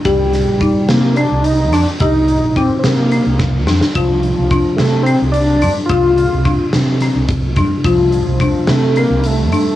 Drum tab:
HH |x-x-x-x-x-x-x-|x-x-x-x-x-----|x-x-x-x-x-x-x-|x-x-x-x-x-x-x-|
SD |--o---o-----o-|------o---o-oo|------o-------|------o-o-----|
BD |o---o---------|o---o-----o---|o---o---------|o---o-----o-o-|

HH |x-x-x-x-x-x-x-|
SD |------o-------|
BD |o---o---------|